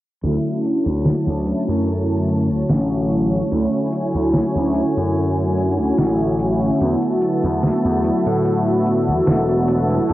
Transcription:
0.21 D2 D3 F#3 A3 C#4 E4 F#4 C#5 A5, closed hi-hat
0.45 closed hi-hat
0.64 closed hi-hat
0.86 D2, closed hi-hat
1.05 snare, closed hi-hat
1.27 D2, closed hi-hat
1.45 D3 F#3 A3 C#4 E4, closed hi-hat
1.68 F#2, closed hi-hat
1.87 closed hi-hat
2.09 closed hi-hat
2.28 closed hi-hat
2.50 D2, closed hi-hat
2.69 A1, snare, closed hi-hat
2.91 closed hi-hat
3.10 closed hi-hat
3.32 closed hi-hat
3.50 D2 D3 F#3 A3 C#4 E4 G#5, closed hi-hat
3.73 closed hi-hat
3.93 closed hi-hat
4.14 D2, closed hi-hat
4.34 snare, closed hi-hat
4.56 D2, closed hi-hat
4.74 D3 F#3 A3 C#4 E4, closed hi-hat
4.97 F#2, closed hi-hat
5.16 closed hi-hat
5.38 closed hi-hat
5.57 closed hi-hat
5.79 D2, closed hi-hat
5.98 A1, snare, closed hi-hat
6.20 closed hi-hat
6.39 closed hi-hat
6.61 closed hi-hat
6.79 E2 D3 F#3 A3 B3 E4 E5 A5, closed hi-hat
7.02 closed hi-hat
7.22 closed hi-hat
7.43 E2, closed hi-hat
7.63 snare, closed hi-hat
7.85 E2, closed hi-hat
8.03 D3 F#3 A3 B3 E4, closed hi-hat
8.26 A2, closed hi-hat
8.45 closed hi-hat
8.67 closed hi-hat
8.86 closed hi-hat
9.08 E2, closed hi-hat
9.27 E1, snare, closed hi-hat
9.49 closed hi-hat
9.68 closed hi-hat
9.90 closed hi-hat
10.08 E2 D3 F#3 A3 B3, closed hi-hat

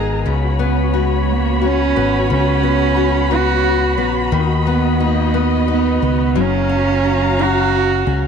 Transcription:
Already playing: G#1 G#2 B3 D#4 G#4 A#4 A#5
0.25 C#2 C#3 F#4 C#5 B5
0.59 B3
0.63 B3
0.94 F#4
0.98 G#3
1.32 A#3
1.62 F#4
1.66 C#4
1.96 G#1 B3
2.30 C#2 C#3
2.34 C#4
2.63 B3
2.97 F#4
3.31 B3
3.36 F#4
3.64 F#4
3.98 A#1 B3
4.32 D#2 D#3 D#5
4.67 B3
5.00 A#3 D#4
5.34 B3
5.68 D#4
5.73 B3
6.02 C#2 B3
6.35 F#1 F#3 F#4 F5 A#5
6.41 C#4
6.69 C#4
7.39 C#4
7.43 F#4
8.07 C#2 C#4

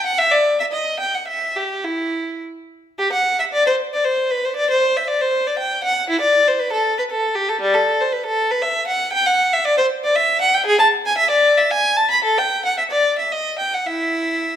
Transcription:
0.06 F#5
0.18 E5
0.32 D5
0.60 E5
0.72 D#5
1.00 G5
1.15 F#5
1.28 E5
1.56 G4
1.85 E4
2.99 G4
3.13 F#5
3.40 E5
3.53 D5
3.66 C5
3.93 D5
4.05 C5
4.31 B4
4.45 C5
4.56 D5
4.70 C5
4.97 E5
5.08 D5
5.21 C5
5.47 D5
5.58 G5
5.84 F#5
6.10 E4
6.21 D5
6.48 C5
6.59 B4
6.72 A4
6.99 B4
7.10 A4
7.35 G4
7.49 A4
7.61 G3
7.74 A4
8.01 C5
8.12 B4
8.26 A4
8.51 B4
8.62 E5
8.87 F#5
9.13 G5
9.26 F#5
9.53 E5
9.65 D5
9.78 C5
10.04 D5
10.15 E5
10.41 F#5
10.54 G5
10.66 G#4
10.79 A5
11.06 G#5
11.18 E5
11.30 D5
11.57 E5
11.70 G#5
11.97 A5
12.11 B5
12.24 A4
12.38 G5
12.65 F#5
12.78 E5
12.91 D5
13.19 E5
13.32 D#5
13.59 G5
13.74 F#5
13.86 E4 E5

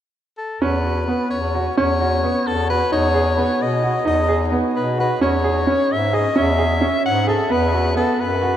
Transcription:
0.38 A4
0.62 E2 C#4 B4
0.85 F#4
1.08 B3
1.30 E2 C#5
1.55 F#4
1.77 E2 C#4 C#5
2.00 F#4
2.23 B3
2.46 E2 A4
2.69 F#4 B4
2.91 E2 D#4 C#5
3.14 G#4
3.37 B3
3.60 B2 D#5
3.82 F#4
4.05 E2 D#4 D#5
4.29 G#4
4.52 B3
4.75 B2 B4
4.98 F#4 B4
5.21 E2 C#4 C#5
5.44 G#4
5.67 C#4
5.90 G#2 E5
6.13 G#4 D#5
6.36 E2 C#4 E5
6.59 G#4
6.81 C#4
7.04 G#2 F#5
7.27 G#4 A4
7.50 E2 B3 B4
7.73 F#4
7.96 B3 A4
8.19 F#2 B4
8.42 F#4

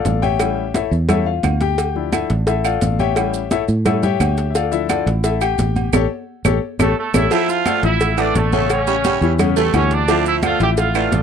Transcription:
Already playing: F4 A4 D5 F5
0.05 A1, cowbell, high conga, low timbale, maracas
0.22 G4 C#5 E5 G5, high conga, low agogo, maracas
0.40 G3 C#4 E4, cowbell, high conga, low agogo, claves, maracas
0.57 high conga
0.74 E4 A4 C#5 E5, cowbell, high conga, low agogo, maracas
0.91 E2, high conga, maracas
1.09 G3 C#4 E4 A4 C#5 E5, cowbell, high conga, low conga, low agogo, claves, maracas
1.26 F4 F5, high conga
1.43 D2, cowbell, high conga, low timbale, low agogo, claves, maracas
1.61 G4 G5, cowbell, high conga, maracas
1.78 cowbell, low agogo, maracas
1.95 F3 D4 E4, high conga
2.13 E4 A4 E5, cowbell, high conga, low agogo, claves, maracas
2.30 A1, cowbell, high conga, maracas
2.47 E4 A4 E5, cowbell, high conga, low agogo, maracas
2.65 F4 A4 D5 F5, high conga, low agogo, claves, maracas
2.81 A1, cowbell, high conga, maracas
2.99 G4 C#5 E5 G5, high conga, low agogo, maracas
3.16 G3 C#4 E4, cowbell, high conga, low agogo, claves, maracas
3.34 high conga, maracas
3.51 E4 A4 C#5 E5, cowbell, high conga, low agogo, maracas
3.68 A2, high conga, maracas
3.85 G3 C#4 E4 A4 C#5 E5, cowbell, high conga, low conga, low agogo, claves, maracas
4.03 G4 C#5 E5 G5, high conga, low conga, maracas
4.20 D2, cowbell, high conga, low agogo, claves, maracas
4.37 cowbell, maracas
4.50 E5
4.55 F4 A4 D5 F5, cowbell, high conga, low agogo, maracas
4.71 F3 D4 E4 A4 E5, high conga, maracas
4.89 D4 F4 A4 D5, cowbell, high conga, low agogo, claves, maracas
5.06 A1, cowbell, high conga, maracas
5.24 E4 A4 E5, cowbell, high conga, low agogo, maracas
5.41 G4 G5, high conga, low agogo, claves, maracas
5.58 A1, cowbell, high conga, maracas
5.76 high conga, low agogo, maracas
5.93 A1 G4 A4 C#5, cowbell, high conga, high timbale, claves, maracas
6.45 A1 G4 A4 C#5, cowbell, high conga, high timbale, claves, maracas
6.79 A1 A3 G4 A4 C#5, cowbell, high conga, high timbale, claves, maracas
6.97 A3 A4
7.14 A1 E4 G4 A4 C#5 E5, cowbell, high conga, high timbale, claves, maracas
7.31 F3 E4 E5, cowbell, high conga, low agogo, maracas
7.48 F4 F5, high conga, maracas
7.66 A3 A4 D5, cowbell, high conga, low agogo, claves, maracas
7.83 A1 F3 E4 E5, cowbell, high conga, maracas
8.00 cowbell, high conga, low agogo, maracas
8.17 E3 A3 D4 A4 D5, high conga, low agogo, claves, maracas
8.35 A1 A3 A4, cowbell, high conga, maracas
8.53 C#3 A3 C#4 A4 C#5, high conga, low agogo, maracas
8.70 C#4 C#5, cowbell, high conga, low agogo, claves, maracas
8.87 C#3 G3 C#4 C#5, high conga, maracas
9.04 G3, cowbell, high conga, low agogo, maracas
9.21 E2 E3 E4 G4, high conga, maracas
9.39 C#3 C#4 C#5, cowbell, high conga, low conga, low agogo, claves, maracas
9.56 E3 A3 E4 G4 A4, maracas
9.74 D2 E3 C#4 E4 G4 C#5, cowbell, high conga, low agogo, claves, maracas
9.91 D4 D5, cowbell, maracas
10.08 F3 E4 E5, cowbell, high conga, low agogo, maracas
10.26 E4 E5, high conga, maracas
10.43 A3 F4 A4 D5 F5, cowbell, high conga, low agogo, claves, maracas
10.60 A1 F3 E4 G4 E5 G5, cowbell, high conga, maracas
10.77 F4 F5, cowbell, high conga, low agogo, maracas
10.95 E3 A3 A4 D5, high conga, low agogo, claves, maracas
11.12 A1, cowbell, high conga, low timbale, maracas

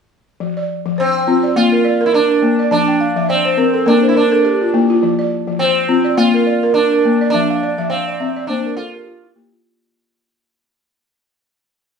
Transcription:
0.40 F3
0.57 D5
0.86 F3
0.98 C4 C5
1.27 C4 F4
1.43 D5
1.56 A#3 F4
1.72 A#4
1.85 D5
2.01 A#4
2.06 E4
2.13 D4 A#4
2.29 A#4
2.42 A#3
2.59 D5
2.71 F3 D4 A5
2.88 G5
3.00 F5
3.16 F3 E5
3.29 C4 D5
3.45 C5
3.57 C4 A#4
3.74 A4
3.86 A#3 D4 A#4
4.02 C5
4.09 E4
4.15 D4 A#4
4.32 A4 A#4
4.45 G4
4.62 F4
4.74 A#3 E4
4.90 F4
5.03 F3
5.19 D5
5.47 F3
5.59 C4 C5
5.88 C4 F4
6.04 D5
6.17 A#3 F4
6.34 A#4
6.46 D5
6.63 A#4
6.74 D4 A#4
6.92 A#4
7.05 A#3
7.21 D5
7.30 F3 D4 E5
7.50 F5
7.63 D5
7.78 F3 E5
7.90 C4 F5
8.08 D5
8.20 C4 E5
8.37 D5
8.47 A#3 D4 C5
8.66 A#4
8.77 F4 A4
8.94 G4 A#4
9.07 F4
9.23 E4
9.36 A#3 G4
9.52 F4

